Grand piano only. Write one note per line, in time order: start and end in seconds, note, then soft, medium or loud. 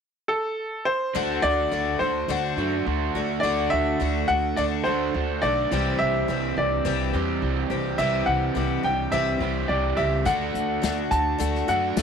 0.28 0.88 A4 medium
0.85 1.45 C5 medium
1.42 1.96 D5 loud
1.99 3.10 C5 medium
3.40 3.71 D5 medium
3.70 4.30 E5 medium
4.28 4.55 F#5 loud
4.56 4.63 D5 medium
4.84 5.44 C5 medium
5.42 5.95 D5 medium
5.99 6.58 E5 medium
6.58 7.67 D5 medium
7.98 8.28 E5 medium
8.26 8.86 F#5 medium
8.84 9.14 G5 medium
9.12 9.71 E5 medium
9.68 9.98 D5 medium
9.97 10.24 E5 medium
10.26 11.14 F#5 medium
11.11 11.70 A5 medium
11.69 12.02 F#5 medium